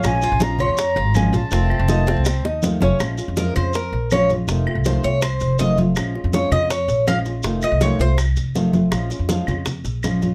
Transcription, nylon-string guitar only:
X:1
M:4/4
L:1/8
Q:1/4=162
K:Bbm
V:1 name="Nylon-string guitar"
[F,A,DF] [A,DF] [F,A,DF] [A,DF] z2 [F,A,DF] [A,DF] | [C,E,=A,CF] [A,CF] [C,E,A,CF] [A,CF] z2 [C,E,A,CF] [A,CF] | [F,A,DF] [A,DF] [F,A,DF] [A,DF] z2 [F,A,DF] [A,DF] | [C,E,=A,CF] [A,CF] [C,E,A,CF] [A,CF] z2 [C,E,A,CF] [A,CF] |
[F,A,DF] [A,DF] [F,A,DF] [A,DF] z2 [F,A,DF] [A,DF] | [C,E,=A,CF] [A,CF] [C,E,A,CF] [A,CF] z2 [C,E,A,CF] [A,CF] | [F,A,DF] [A,DF] [F,A,DF] [A,DF] z2 [F,A,DF] [A,DF] |]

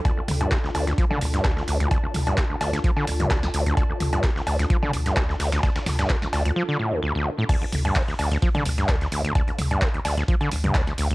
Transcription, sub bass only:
X:1
M:4/4
L:1/8
Q:"Swing 16ths" 1/4=129
K:Dm
V:1 name="Sub bass" clef=bass
z D,, z D,, z D,, D,, D,, | z D,, z D,, z D,, D,, D,, | z D,, z D,, z D,, D,, D,, | z D,, z D,, z4 |
z D,, z D,, z D,, D,, D,, | z D,, z D,, z D,, D,, D,, |]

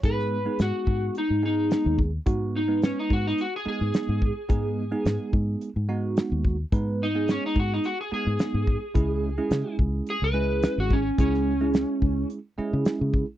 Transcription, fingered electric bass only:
X:1
M:4/4
L:1/16
Q:1/4=108
K:G#m
V:1 name="Fingered electric bass" clef=bass
G,,4 G,, z G,,2 z G,,4 D,,3 | G,,6 G,,2 z3 G,, z G,,2 z | G,,4 G,, z G,,2 z G,,4 D,,3 | G,,6 G,,2 z3 G,, z G,,2 z |
C,,4 C, z C,,2 z C,,4 G,,,3 | C,,6 C,,2 z3 C, z C,2 z |]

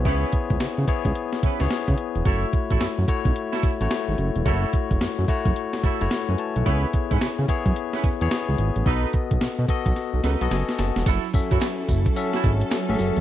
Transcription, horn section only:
X:1
M:4/4
L:1/16
Q:"Swing 16ths" 1/4=109
K:F#dor
V:1 name="Horn section"
[CEB]2 z8 [CEB] z4 z | [EFA] z2 [EFA] z4 z [EFA] z6 | [EFA]2 z8 [EFA] z4 z | [CEB] z2 [CEB] z4 z [CEB] z6 |
[DAB]2 z8 [DAB] z4 z | [EFA] z2 [EFA] z4 z [EFA] z6 |]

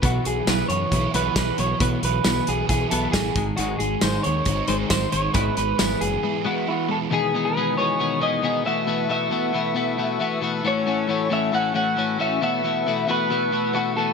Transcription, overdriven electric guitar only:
X:1
M:4/4
L:1/8
Q:1/4=136
K:E
V:1 name="Overdriven electric guitar" clef=bass
B,, F, E, B, E B, E, F, | B,, F, E, B, E B, E, G,, | G,, G, D, ^B, D B, D, G, | G,, G, E, B, E B, E, G, |
z8 | z8 | z8 | z8 |]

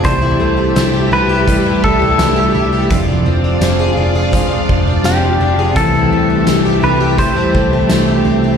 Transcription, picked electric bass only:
X:1
M:4/4
L:1/16
Q:1/4=84
K:C
V:1 name="Picked electric bass" clef=bass
C,,2 C,,2 C,,2 C,,3 z C,,2 C,,2 C,,2 | F,,,2 F,,,2 F,,,2 F,,,3 z F,,,2 F,,,2 F,,,2 | C,,2 C,,2 C,,2 C,,3 z C,,2 C,,2 C,,2 |]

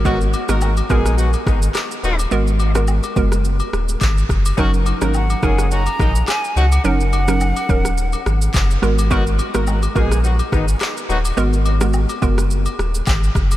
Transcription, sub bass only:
X:1
M:4/4
L:1/16
Q:"Swing 16ths" 1/4=106
K:G#dor
V:1 name="Sub bass" clef=bass
G,,,3 G,,,3 A,,,4 G,,,2 z2 D,,,2 | G,,,4- G,,, z F,,,4 D,,,2 G,,,2 F,,,2 | F,,,3 G,,,3 F,,,4 A,,,2 z2 C,,2 | F,,,4- F,,, z D,,,4 G,,,2 F,,,2 G,,,2- |
G,,,3 G,,,3 A,,,4 G,,,2 z2 D,,,2 | G,,,4- G,,, z F,,,4 D,,,2 G,,,2 F,,,2 |]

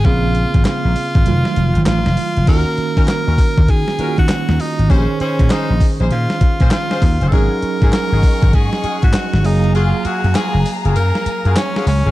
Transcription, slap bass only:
X:1
M:4/4
L:1/16
Q:"Swing 16ths" 1/4=99
K:Bbm
V:1 name="Slap bass" clef=bass
B,,,3 A,,, z B,,, z A,,, F,,, z F,,, A,,, =A,,, F,,, z F,,, | E,, z2 E, z E,, z E,, E, z2 E, z E,, z A,,, | B,,, z2 B,, z B,,, z B,,, B,, z2 B,, z2 E,, G,,, | A,,, z2 A,, z A,,, z A,,, A,, z2 A,, z A,,, G,,,2- |
G,,,2 z G,, z G,,, z G,,, G,, z2 G,, z2 D,, A,,, |]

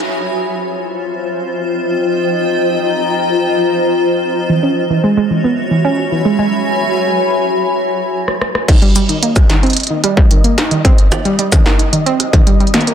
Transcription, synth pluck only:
X:1
M:4/4
L:1/16
Q:1/4=111
K:Ebmix
V:1 name="Synth pluck" clef=bass
z16 | z16 | z _F, D z F, A, A, F, _C z F, D z F, A, A, | z16 |
E, G, G, E, B, z E, C z E, G, G, E, B, z E, | C z E, G, G, E, B, z E, C z E, G, G, E, B, |]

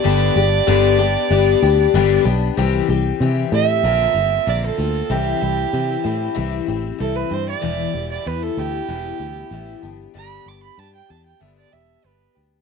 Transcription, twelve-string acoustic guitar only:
X:1
M:4/4
L:1/8
Q:1/4=95
K:G
V:1 name="Twelve-string acoustic guitar"
[G,,D,G,B,DG] [G,B,DG] [G,,D,G,B,DG] [G,B,DG] [G,B,DG] [G,B,DG] [G,,D,G,B,DG] [G,B,DG] | [C,E,G,CG] [G,CG] [E,G,CG] [G,CG] [_B,,D,_B,C=F] [B,CF] [D,B,CF] [B,CF] | [C,E,G,CE] [G,CE] [E,G,CE] [G,CE] [C,E,G,CE] [G,CE] [E,G,CE] [G,CE] | [E,,B,,E,G,B,E] [E,G,B,E] [E,G,B,E] [E,G,B,E] [E,,B,,E,G,B,E] [E,G,B,E] [E,G,B,E] [G,B,DG] |
[G,,D,G,B,DG] [G,B,DG] [G,B,DG] [G,B,DG] [G,,D,G,B,DG] [G,B,DG] [G,B,DG] [G,B,DG] |]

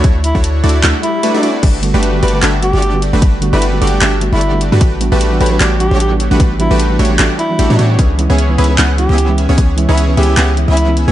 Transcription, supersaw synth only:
X:1
M:4/4
L:1/16
Q:"Swing 16ths" 1/4=151
K:Glyd
V:1 name="Supersaw synth"
[A,DE] z2 [A,DEFc]3 [A,DEFd]2 [A,DEFe] z3 [A,DEFB] [A,DEFd] [A,DEFd]2 | [A,DFGB] z2 [A,DFGB]3 [A,DFGd]2 [A,DFGe] z2 [A,DFGd]4 [A,DFGB] | [A,DFGB] z2 [A,DFGB]3 [A,DFGd]2 [A,DFGe] z2 [A,DFGd]4 [A,DFGB] | [A,DFG] z2 [A,DFGB]3 [A,DFGc]2 [A,DFGd] z2 [A,DFGc]4 [A,DFGB] |
[DFGB] z2 [A,DFGB]3 [A,DFGc]2 [A,DFGd] z3 [A,DFGA] [A,DFGc] [A,DFGc]2 | [B,CE^Gc] z2 [B,CEGc]3 [B,CEGe]2 [B,CEGf] z2 [B,CEGe]4 [B,CEGc] | [B,CE] z2 [B,CE^Gc]3 [B,CEGe]2 [B,CEGf] z2 [B,CEGe]4 [B,CEGc] |]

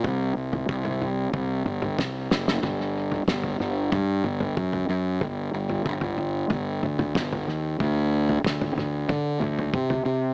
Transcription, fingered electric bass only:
X:1
M:4/4
L:1/8
Q:1/4=93
K:none
V:1 name="Fingered electric bass" clef=bass
C,, C,, C,,2 C,, G,,, C,, ^F,,, | G,,,2 G,,, G,,, G,, G,,, ^F,, F,, | G,,, G,,, G,,,2 G,,, D,, G,,, _E,, | D,,2 D,, D,, D, D,, C, C, |]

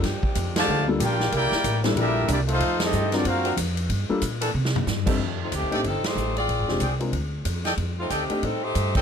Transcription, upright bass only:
X:1
M:4/4
L:1/8
Q:"Swing" 1/4=186
K:Cmix
V:1 name="Upright bass" clef=bass
G,, z F,,2 D,,2 B,,,2 | C,, z A,,,2 B,,,2 C,,2 | F,,2 G,,2 ^F,,2 ^E,,2 | G,, z B,,2 C,2 G,,2 |
[K:Fmix] F,,2 (3D,, C,, A,,, G,,, z A,,,2 | (3B,,, _A,,, F,,, C,,2 D,,2 F,,2 | F,,2 D,, z A,,2 G,,2 |]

